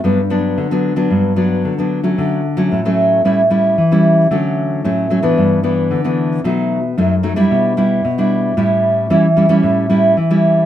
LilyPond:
\new Staff \with { instrumentName = "Nylon-string guitar" } { \time 4/4 \key g \major \tempo 4 = 113 << { <fis b d'>16 r16 <fis b d'>8. <fis b d'>8 <fis b d'>8. <fis b d'>8. <fis b d'>8 <fis a cis'>16~ | \key d \major <fis a cis'>8 r16 <fis a cis'>8 <fis a cis'>8. <g cis' e'>16 r16 <g cis' e'>8 r16 <g cis' e'>8. | <fis a cis'>4 <fis a cis'>8 <fis a cis'>16 <e b d'>8. <e b d'>8. <e b d'>8. | <fis a dis'>8. r16 <fis a dis'>16 r16 <fis a dis'>16 <g d' e'>8. <g d' e'>8 r16 <g d' e'>8. |
<g cis' e'>4 <g cis' e'>16 r16 <g cis' e'>16 <g cis' e'>8. <g cis' e'>8 r16 <g cis' e'>8. | } \\ { g,4 d4 g,4 d4 | d4 a,4 a,4 e4 | d4 a,4 g,4 d4 | b,4 fis,4 b,4 b,4 |
a,4 e4 a,4 e4 | } >> }